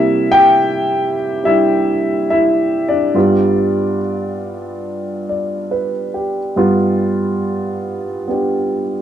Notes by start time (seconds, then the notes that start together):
Already playing: C3 G3 A#3 E4 E5
0.32 G4 G5
1.44 G3 D4 E4 E5
2.30 E4 E5
2.88 D4 D5
3.14 G2 G3 B3 F4
5.29 D5
5.71 B4
6.14 G4
6.56 G2 G3 B3 F4
8.28 B3 D4 G4